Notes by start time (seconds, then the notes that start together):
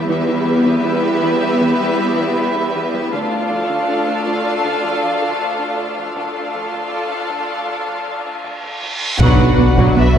0.08 E2 E3 G3 B3 E4 G4 B4 E5
0.28 E4
0.47 G3
0.66 E3
0.85 E4
1.04 E4
1.23 E3
1.43 E4
1.61 E3
1.80 G3
2.00 G3
2.19 E3
2.56 E4
2.76 E3
2.94 G3
3.12 D2 D3 A3 D4 F4 A4 F5, taiko
3.32 D4
3.51 F3
3.70 D3
3.89 D4
4.08 D4
4.27 D3, taiko
4.46 D4
4.65 D3
4.84 F3
5.03 F3
5.22 D3
5.59 D4
5.78 D3
5.98 F3
6.15 D2 D3 A3 D4 F4 A4 F5, taiko, reverse cymbal
6.36 D4
6.55 F3
6.73 D3, taiko
6.92 D4
7.12 D4
7.30 D3, taiko
7.50 D4
7.68 D3
7.88 F3
8.08 F3
8.26 D3
8.44 taiko mid
8.63 D4, taiko low-mid
8.82 D3, taiko low-mid
9.02 F3, taiko low
9.20 B1 B2 F#3 B3 D4 F#4 B4 D5 F#5, taiko, impact
9.40 B2 B3 F#4
9.59 B1 B2 B3 D4 F#4
9.78 B2 F#3 B3, taiko
9.96 B1 B2 B3 F#4 E5
10.15 B2